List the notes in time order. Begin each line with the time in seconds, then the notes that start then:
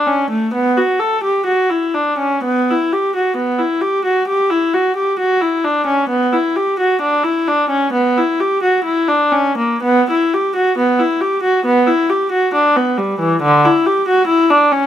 0.07 C#4
0.30 A3
0.53 B3
0.77 F#4
1.00 A4
1.24 G4
1.46 F#4
1.69 E4
1.94 D4
2.18 C#4
2.43 B3
2.70 E4
2.92 G4
3.16 F#4
3.37 B3
3.59 E4
3.81 G4
4.05 F#4
4.27 G4
4.50 E4
4.74 F#4
4.96 G4
5.19 F#4
5.41 E4
5.64 D4
5.86 C#4
6.09 B3
6.32 E4
6.56 G4
6.79 F#4
7.01 D4
7.24 E4
7.47 D4
7.69 C#4
7.93 B3
8.17 E4
8.40 G4
8.63 F#4
8.84 E4
9.08 D4
9.32 C#4
9.57 A#3
9.83 B3
10.10 E4
10.34 G4
10.56 F#4
10.78 B3
10.99 E4
11.21 G4
11.43 F#4
11.65 B3
11.87 E4
12.10 G4
12.32 F#4
12.54 D4
12.76 B3
12.98 G3
13.20 E3
13.42 D3
13.65 E4
13.86 G4
14.08 F#4
14.27 E4
14.50 D4
14.72 C#4